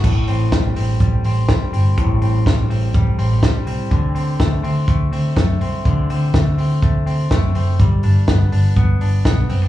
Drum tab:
CC |x-------|--------|--------|--------|
HH |-oxoxoxo|xoxoxoxo|xoxoxoxo|xoxoxoxo|
SD |--o---o-|--o---o-|--o---o-|--o---o-|
BD |o-o-o-o-|o-o-o-o-|o-o-o-o-|o-o-o-o-|

CC |--------|
HH |xoxoxoxo|
SD |--o---o-|
BD |o-o-o-o-|